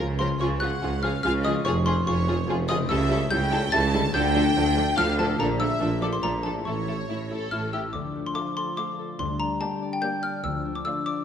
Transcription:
Already playing: C#3 F3 C#4 F4 A#4
0.00 C#2 C#3
0.19 C#3 F3 F4 A#4 C5 C6
0.26 C#4
0.31 F4
0.35 G#4
0.39 C#2 C#3 F3 F4 G#4 C#5 C#6
0.60 F3 F4 G#4 F#5 F#6
0.82 C#2 C#3 F3 F4 G#4
1.02 F3 F4 G#4 F5 F6
1.23 C#2 C#3 F3 F4 G#4 F5 F6
1.44 F3 F4 G#4 D#5 D#6
1.51 C#4
1.56 F4
1.61 F1 G#4
1.65 F1 F2 F3 F4 G#4 C#5 C#6
1.86 F3 F4 G#4 C5 C6
2.06 F1 F2 F3 F4 G#4 C#5 C#6
2.28 F3 F4 G#4
2.47 F1 F2 F3 F4 G#4
2.68 C#3 F3 F4 G#4 D#5 D#6
2.76 A3
2.80 E4
2.84 C#3 G4
2.89 C#2 G3 E4 A4 E5 E6
3.09 G3 E4 A4
3.30 C#2 C#3 G3 E4 A4 G5 G6
3.51 G3 E4 A4
3.72 C#2 C#3 G3 E4 A4 A5 A6
3.93 D3 G3 E4 A4
4.01 A3
4.05 D4
4.10 D3 F3 F4
4.14 D2 D4 A4 G5 G6
4.35 F3 D4 A4
4.56 D2 D3 F3 D4 A4
4.77 F3 D4 A4
4.97 D2 D3 F3 D4 A4 F5 F6
5.18 A#2 F3 D4 A4 A5
5.25 A3
5.30 D4
5.34 F4
5.39 A#1 A#2 F3 D4 A4 A#4 A#5
5.59 F3 D4 A4 E5 E6
5.80 A#1 A#2 F3 D4 A4
6.02 F3 D4 A4 D5 D6
6.12 C5 C6
6.22 A#1 A#2 F3 D4 A4 A#4 A#5
6.43 F3 D4 A4 A5
6.48 A2
6.53 A3
6.57 E4
6.62 A1 A2 A4 C#6
6.66 A1 A3 E4 A4 C#5
6.87 A3 E4 A4
7.08 A1 A2 A3 E4
7.30 A3 E4 A4
7.51 A1 A2 A3 E4 F6
7.73 A3 E4 G4 E6
7.93 D2 D3 F3 D4 D6
8.15 A3
8.26 C6
8.35 A3 F4 A4 D6
8.57 A4 C6
8.77 A3 F4 A4 F5 D6
8.99 A4
9.19 D2 D3 G3 C6
9.40 D4 A#5
9.61 A#3 G4 D5 A5
9.82 D5
9.93 G5
10.02 A#3 G4 D5 G5 G6
10.23 D5 F6
10.44 D2 D3 F3 D4 E6
10.65 D4
10.75 D6
10.85 A3 F4 D5 E6
11.06 D5 D6

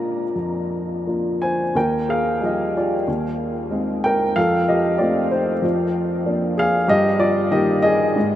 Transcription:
Already playing: A#2 A#3 D4 F4 D5 A#5
0.36 F2
1.07 A#3 D4 F4
1.42 C5 G#5
1.75 D#2 A#4 G5
2.09 G#4 F5
2.41 F3 G3 D#4 G4
2.45 D#5
2.77 F4 D5
3.08 D#2
3.70 G#3 C4 D#4
4.04 A#4 G5
4.36 F2 A4 F5
4.68 G4 D#5
4.98 F3 A3 C4 F4 D5
5.31 D#4 C5
5.62 F2
6.25 F3 A#3 D4
6.58 G#4 F5
6.88 G2 G4 D#5
7.19 F4 D5
7.51 D#3 A#3 D#4 G4 D#5
7.82 G#4 D#5
8.16 G#2

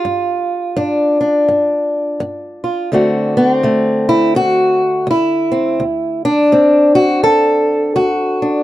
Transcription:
Already playing: F4
0.05 G2
0.76 G2 D4
1.21 D4
1.48 G2
2.20 G2
2.64 F4
2.92 D2 D3 A3 C4 F#4
3.37 B3
3.50 C4
3.63 D2 A3
4.09 E4
4.35 D2 F#4
5.07 D2 E4
5.52 C4
5.80 D2
6.25 D4
6.52 D2 C4
6.95 F#4
7.23 D2 A4
7.96 D2 F#4
8.42 D4

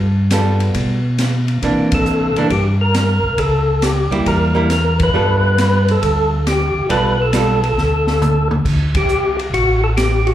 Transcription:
Already playing: G2
0.31 G3 B3 F4 A4, snare, hi-hat pedal, ride
0.60 ride
0.74 B2, kick, ride
1.18 snare, hi-hat pedal, ride
1.48 ride
1.62 C3 E3 A#3 D4, kick, ride
1.92 A4, kick, ride
2.06 hi-hat pedal
2.36 C3 E3 A#3 D4, ride
2.50 G2 G4, kick, ride
2.81 A#4
2.94 snare, hi-hat pedal, ride
3.24 C2
3.38 C#2 A4, kick, ride
3.82 G4, snare, hi-hat pedal, ride
4.11 C#2 G3 A#3 E4, ride
4.26 E2 A#4, kick, ride
4.55 G3 A#3 E4
4.70 A#4, snare, hi-hat pedal, ride
5.00 B4, kick, ride
5.14 G2 G3 B3 F4 A4
5.58 snare, hi-hat pedal, ride
5.88 A4, ride
6.02 D2, kick, ride
6.47 G4, snare, hi-hat pedal, ride
6.75 D2
6.89 B1 G3 B3 F4 A4 B4, kick, ride
7.22 A4
7.33 G3 B3 F4 A4, snare, hi-hat pedal, ride
7.64 A4, ride
7.77 D2, snare
8.07 snare
8.22 hi-hat pedal, mid tom
8.51 mid tom
8.65 D2, kick, crash
8.95 G4, kick, ride
9.09 C2, hi-hat pedal
9.39 ride
9.53 A1 F#4, kick, ride
9.84 A4
9.97 G4, snare, hi-hat pedal, ride
10.26 F#4, ride

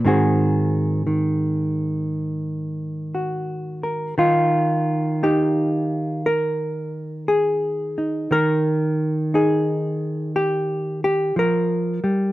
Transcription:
0.04 G#2 D#3 C4 F#4 G#4
1.07 D#3
3.15 F#4
3.83 A#4
4.18 D#3 D#4 F4
5.23 D#4 G4
6.26 A#4
7.28 G#4
7.98 D#4
8.31 D#3 A#4
9.34 D#4 G#4
10.36 G4
11.04 G4
11.36 F3 A#4
12.04 G3

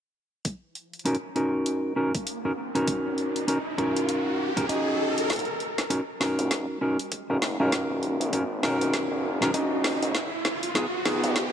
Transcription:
0.45 kick, closed hi-hat, riser
0.75 closed hi-hat
0.93 closed hi-hat
0.99 closed hi-hat
1.05 C#4 D#4 F#4 A#4, closed hi-hat
1.15 closed hi-hat
1.35 C#4 D#4 F#4 A#4, closed hi-hat
1.66 closed hi-hat
1.96 C#4 D#4 F#4 A#4
2.15 kick, closed hi-hat
2.27 closed hi-hat
2.45 C#4 D#4 F#4 A#4
2.75 C#4 D#4 F#4 A#4, closed hi-hat
2.88 kick, closed hi-hat
3.18 closed hi-hat
3.36 closed hi-hat
3.48 C#4 D#4 F#4 A#4, closed hi-hat
3.78 C#4 D#4 F#4 A#4, kick, closed hi-hat
3.96 closed hi-hat
4.09 closed hi-hat
4.57 C#4 D#4 F#4 A#4, kick, closed hi-hat
4.69 C#4 D#4 F#4 D#5, closed hi-hat
5.18 closed hi-hat
5.30 D#1, kick, snare, closed hi-hat, riser
5.33 closed hi-hat
5.36 closed hi-hat
5.39 closed hi-hat
5.45 closed hi-hat
5.60 closed hi-hat
5.78 snare, closed hi-hat
5.90 C#4 D#4 F#4 A#4, kick, closed hi-hat
6.20 C#4 D#4 F#4 A#4, snare, open hi-hat
6.39 D#1, closed hi-hat
6.51 kick, snare, closed hi-hat
6.81 C#4 D#4 F#4 A#4
6.99 closed hi-hat
7.12 kick, closed hi-hat
7.30 F#1 C#4 D#4 F#4 A#4
7.42 snare, open hi-hat
7.60 C#2 C#4 D#4 F#4 A#4
7.72 kick, snare, closed hi-hat
7.90 D#1
8.03 closed hi-hat
8.20 G#1, closed hi-hat
8.33 C#4 D#4 F#4 A#4, kick, closed hi-hat
8.63 C#2 C#4 D#4 F#4 A#4, snare, open hi-hat
8.81 D#1, closed hi-hat
8.94 kick, snare, closed hi-hat
9.11 F#1
9.42 C#4 D#4 F#4 A#4, snare, closed hi-hat
9.54 D#1 C#4 D#4 F#4 D#5, kick, closed hi-hat
9.84 snare, open hi-hat
10.02 D#1, closed hi-hat
10.15 F1, kick, snare, closed hi-hat
10.45 snare, closed hi-hat
10.63 closed hi-hat
10.75 B3 D#4 F4 G#4, kick, snare, closed hi-hat
11.05 B3 D#4 F4 G#4, snare, open hi-hat
11.24 F1, closed hi-hat
11.36 kick, snare, closed hi-hat

